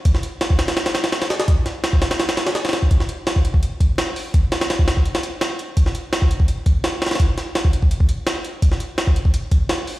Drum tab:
HH |x---x---x---x-x-x-x-x-x-x-x-x-x-|x---x---x---x-x-x-x-x-x-x-xxx---|x---x---x---x---x---x---x---o---|x---x-x-x---x---x-x-x---x---x---|
SD |--o-----o---o-o-o-o-o-o-o-o-o-o-|----o---o---o-o-o-o-o-o-o-ooo---|--o-----o---------------o-------|----o-o-o---o-----o-----o-------|
BD |o---------o---------------------|o---------o-------------------o-|o---------o---o-----o-----------|o---------o---o-----------------|

HH |x---x---x---x---x---x---x---xxxx|x---x---x---x---x---x---x---x---|x---x---x---x---x---x---x---o---|
SD |--o-----o---------------o---oooo|----o---o---------------o-------|--o-----o---------------o-------|
BD |o---------o---o-----o-----------|o---------o---o---o-------------|o---------o---o-----o-----------|